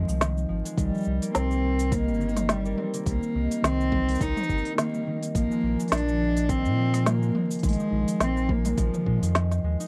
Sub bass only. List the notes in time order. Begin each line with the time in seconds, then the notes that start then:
0.09 C2
0.50 G#1
0.78 C2
1.07 C2
1.35 C2
2.09 G1
3.06 C2
3.35 C2
3.63 C2
4.21 C2
4.49 G1
5.35 A#1
5.63 A#1
5.92 A#1
6.65 A#2
7.64 A#1
7.92 A#1
8.20 A#1
8.78 A#1
9.06 A#2
9.22 F2
9.64 D#2